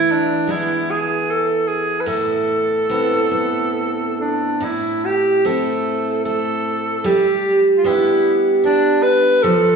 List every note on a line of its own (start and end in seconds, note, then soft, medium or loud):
0.00 3.17 E3 medium
0.00 0.13 E4 medium
0.00 0.49 E4 medium
0.11 0.53 D4 medium
0.47 0.86 G#3 soft
0.47 2.90 B3 medium
0.47 2.07 E4 medium
0.47 0.92 E4 medium
0.90 1.32 G#4 medium
1.31 1.69 A4 medium
1.68 2.02 G#4 medium
2.00 2.09 B4 medium
2.06 4.59 A2 medium
2.06 2.91 E4 medium
2.06 4.18 A4 medium
2.90 3.30 B3 soft
2.90 5.45 C4 soft
2.90 5.45 E4 medium
3.31 4.69 B3 soft
4.20 4.65 D4 medium
4.60 7.04 A2 medium
4.60 5.07 E4 medium
5.05 5.47 G4 medium
5.45 6.24 A3 medium
5.45 7.12 C4 soft
5.45 7.13 E4 medium
5.45 6.24 A4 medium
6.24 7.12 A3 medium
6.24 6.96 A4 medium
6.96 7.08 A4 medium
7.04 9.42 G3 medium
7.04 7.60 G4 medium
7.77 7.88 F4 medium
7.84 9.50 B3 medium
7.84 8.62 D4 medium
7.84 8.37 E4 medium
7.84 9.51 G4 medium
8.64 9.51 D4 medium
8.64 9.04 D4 medium
9.03 9.44 B4 medium
9.43 9.76 F3 medium
9.43 9.76 A4 loud